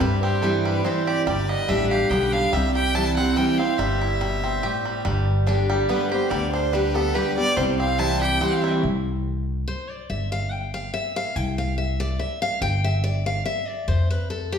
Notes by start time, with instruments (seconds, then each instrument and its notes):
Already playing: five-string banjo C4 E4 G4
0.00 upright bass G2, steel-string acoustic guitar G2, five-string banjo G3, fiddle B4
0.22 five-string banjo C4, fiddle G4
0.42 steel-string acoustic guitar E3 G3 C4 E4, five-string banjo E4, fiddle A4
0.65 five-string banjo G3, fiddle B4
0.84 steel-string acoustic guitar E3 G3 C4 E4, five-string banjo C4, fiddle C5
1.07 five-string banjo G4, fiddle D5
1.26 upright bass G1, steel-string acoustic guitar G2, five-string banjo G3, fiddle D5
1.49 five-string banjo B3, fiddle D#5
1.68 upright bass A1, steel-string acoustic guitar D3 G3 B3 G4, five-string banjo D4, fiddle E5
1.90 five-string banjo G4, fiddle F5
2.10 upright bass B1, steel-string acoustic guitar D3 G3 B3 G4, five-string banjo B3, fiddle G5
2.32 five-string banjo D4, fiddle F5
2.53 upright bass C2, steel-string acoustic guitar C3, five-string banjo G3, fiddle E5
2.74 five-string banjo G4, fiddle G5
2.95 steel-string acoustic guitar E3 G3 C4 E4, five-string banjo E4, fiddle A5
3.17 five-string banjo C4, steel-string acoustic guitar C4 E4, fiddle F#5
3.36 steel-string acoustic guitar E3 G3 C4 E4, five-string banjo G3, fiddle G5
3.58 five-string banjo C4, steel-string acoustic guitar C4 E4, fiddle F5
3.78 upright bass G1, steel-string acoustic guitar G2, five-string banjo G3, fiddle E5
4.02 five-string banjo E4
4.21 steel-string acoustic guitar B2, five-string banjo G3
4.44 five-string banjo C4
4.63 steel-string acoustic guitar A2, five-string banjo G4
4.85 five-string banjo G3
5.05 upright bass G1, steel-string acoustic guitar G2, five-string banjo G3
5.46 steel-string acoustic guitar D3 G3 B3 G4, five-string banjo D4
5.70 five-string banjo G3
5.89 steel-string acoustic guitar D3 G3 B3 G4, five-string banjo B3, fiddle B4
6.11 steel-string acoustic guitar B3 G4, five-string banjo G4, fiddle C5
6.30 upright bass D2, steel-string acoustic guitar D3, five-string banjo G3, fiddle D5
6.53 five-string banjo D4, fiddle C5
6.72 steel-string acoustic guitar D3 G3 B3 G4, five-string banjo G3, fiddle B4
6.94 five-string banjo B3, steel-string acoustic guitar B3 G4, fiddle A4
7.14 steel-string acoustic guitar D3 G3 B3 G4, five-string banjo G4, fiddle B4
7.37 five-string banjo G3, steel-string acoustic guitar B3 G4, fiddle D5
7.56 upright bass C2, steel-string acoustic guitar C3, five-string banjo G3, fiddle C5
7.79 five-string banjo C4, fiddle F5
7.99 steel-string acoustic guitar E3 G3 C4 E4, five-string banjo E4, fiddle A5
8.21 five-string banjo G4, fiddle G5
8.41 steel-string acoustic guitar E3 G3 C4 E4, five-string banjo C4
8.64 five-string banjo E4
8.83 upright bass C2
9.68 steel-string acoustic guitar C5
9.90 steel-string acoustic guitar D5
10.10 upright bass G1, steel-string acoustic guitar E5
10.32 steel-string acoustic guitar F5
10.51 steel-string acoustic guitar G5
10.74 steel-string acoustic guitar F5
10.94 steel-string acoustic guitar E5
11.16 steel-string acoustic guitar F5
11.36 upright bass C2, steel-string acoustic guitar G5
11.58 steel-string acoustic guitar F5
11.78 steel-string acoustic guitar E5
12.00 steel-string acoustic guitar D5
12.19 steel-string acoustic guitar E5
12.42 steel-string acoustic guitar F5
12.61 upright bass G1, steel-string acoustic guitar G5
12.84 steel-string acoustic guitar E5
13.04 steel-string acoustic guitar D5
13.26 steel-string acoustic guitar F5
13.46 steel-string acoustic guitar E5
13.68 steel-string acoustic guitar D5
13.88 upright bass F2, steel-string acoustic guitar C5
14.10 steel-string acoustic guitar B4
14.30 steel-string acoustic guitar A4
14.52 steel-string acoustic guitar G4